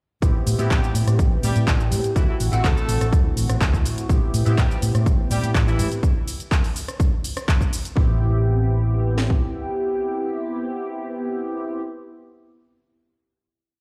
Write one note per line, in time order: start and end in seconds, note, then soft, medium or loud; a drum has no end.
0.22 0.30 A1 loud
0.22 0.56 B3 medium
0.22 0.56 C4 medium
0.22 0.56 E4 medium
0.22 0.56 G4 medium
0.22 kick loud
0.22 closed hi-hat medium
0.22 shaker soft
0.47 0.55 A2 medium
0.47 open hi-hat loud
0.47 shaker medium
0.59 0.67 A2 medium
0.59 2.13 B3 medium
0.59 2.13 C4 medium
0.59 2.14 E4 medium
0.59 2.14 G4 medium
0.59 closed hi-hat medium
0.59 shaker soft
0.71 0.79 A1 medium
0.71 0.92 G3 medium
0.71 0.92 G4 loud
0.71 kick loud
0.71 clap loud
0.71 closed hi-hat medium
0.71 shaker soft
0.84 shaker soft
0.95 1.03 A2 loud
0.95 open hi-hat loud
0.95 shaker medium
1.07 1.20 A2 medium
1.07 cross-stick medium
1.07 closed hi-hat medium
1.07 shaker soft
1.19 1.35 A1 loud
1.19 kick loud
1.19 closed hi-hat medium
1.19 shaker soft
1.43 1.52 A2 medium
1.43 1.64 G3 medium
1.43 1.64 G4 medium
1.43 open hi-hat loud
1.43 shaker medium
1.56 1.63 A2 loud
1.56 closed hi-hat medium
1.56 shaker soft
1.67 1.93 A1 medium
1.67 kick loud
1.67 clap loud
1.67 closed hi-hat medium
1.67 shaker soft
1.80 shaker soft
1.91 2.00 A2 medium
1.91 open hi-hat loud
1.91 shaker medium
2.04 closed hi-hat medium
2.04 shaker soft
2.16 2.24 D2 loud
2.16 2.24 E3 medium
2.16 2.50 A3 medium
2.16 2.50 C4 medium
2.16 2.24 E4 medium
2.16 2.50 E4 medium
2.16 2.50 F#4 medium
2.16 kick loud
2.16 closed hi-hat medium
2.16 shaker soft
2.29 2.36 E3 medium
2.29 2.36 E4 medium
2.40 2.48 A1 medium
2.40 open hi-hat loud
2.40 shaker medium
2.52 2.60 A1 medium
2.52 4.06 A3 medium
2.52 4.07 C4 medium
2.52 4.07 E4 medium
2.52 4.07 F#4 medium
2.52 closed hi-hat medium
2.52 shaker soft
2.64 3.13 A3 medium
2.64 3.13 A4 loud
2.64 kick loud
2.64 clap loud
2.64 closed hi-hat soft
2.64 shaker soft
2.77 shaker soft
2.89 2.97 A1 loud
2.89 open hi-hat loud
2.89 shaker medium
3.01 3.13 A1 loud
3.01 cross-stick medium
3.01 closed hi-hat medium
3.01 shaker soft
3.13 3.29 D2 loud
3.13 kick loud
3.13 closed hi-hat medium
3.13 shaker soft
3.37 3.45 A1 medium
3.37 open hi-hat loud
3.37 shaker medium
3.49 3.57 A1 loud
3.49 cross-stick medium
3.49 closed hi-hat medium
3.49 shaker soft
3.61 3.85 D2 medium
3.61 kick loud
3.61 clap loud
3.61 closed hi-hat medium
3.61 shaker soft
3.73 kick medium
3.73 shaker soft
3.85 3.93 A1 loud
3.85 open hi-hat loud
3.85 shaker medium
3.98 closed hi-hat medium
3.98 shaker soft
4.09 4.18 A1 loud
4.09 4.43 B3 medium
4.09 4.43 C4 medium
4.09 4.43 E4 medium
4.09 4.44 G4 medium
4.09 kick loud
4.09 closed hi-hat medium
4.09 shaker soft
4.34 4.42 A2 medium
4.34 open hi-hat loud
4.34 shaker medium
4.45 4.54 A2 medium
4.45 6.00 B3 medium
4.45 6.00 C4 medium
4.45 6.00 E4 medium
4.45 6.01 G4 medium
4.45 closed hi-hat medium
4.45 shaker soft
4.58 4.66 A1 medium
4.58 4.79 G3 medium
4.58 4.79 G4 loud
4.58 kick loud
4.58 clap loud
4.58 closed hi-hat soft
4.58 shaker soft
4.71 shaker soft
4.82 4.90 A2 loud
4.82 open hi-hat loud
4.82 shaker medium
4.95 5.08 A2 loud
4.95 cross-stick medium
4.95 closed hi-hat medium
4.95 shaker soft
5.06 5.22 A1 loud
5.06 kick loud
5.06 closed hi-hat medium
5.06 shaker soft
5.31 5.39 A2 medium
5.31 5.51 G3 medium
5.31 5.51 G4 loud
5.31 open hi-hat loud
5.31 shaker medium
5.43 5.51 A2 medium
5.43 closed hi-hat medium
5.43 shaker soft
5.55 5.80 A1 medium
5.55 kick loud
5.55 clap loud
5.55 closed hi-hat medium
5.55 shaker soft
5.67 5.88 E3 medium
5.67 5.88 E4 medium
5.67 shaker soft
5.79 5.87 A2 medium
5.79 open hi-hat loud
5.79 shaker medium
5.92 closed hi-hat medium
5.92 shaker soft
6.03 kick loud
6.03 closed hi-hat soft
6.03 shaker soft
6.28 open hi-hat loud
6.28 shaker medium
6.40 closed hi-hat medium
6.40 shaker soft
6.51 kick loud
6.51 clap loud
6.51 closed hi-hat soft
6.51 shaker soft
6.64 open hi-hat medium
6.64 shaker soft
6.76 open hi-hat loud
6.76 shaker medium
6.88 cross-stick medium
6.88 closed hi-hat medium
6.88 shaker soft
7.00 kick loud
7.00 closed hi-hat soft
7.00 shaker soft
7.24 open hi-hat loud
7.24 shaker medium
7.37 cross-stick medium
7.37 closed hi-hat medium
7.37 shaker soft
7.48 kick loud
7.48 clap loud
7.48 closed hi-hat medium
7.48 shaker soft
7.61 kick medium
7.61 shaker soft
7.73 open hi-hat loud
7.73 shaker medium
7.85 closed hi-hat medium
7.85 shaker soft
7.95 9.38 A1 loud
7.95 11.80 B3 medium
7.95 11.80 C4 medium
7.95 11.81 E4 medium
7.95 11.82 G4 loud
7.95 kick loud
9.18 snare medium
9.30 kick medium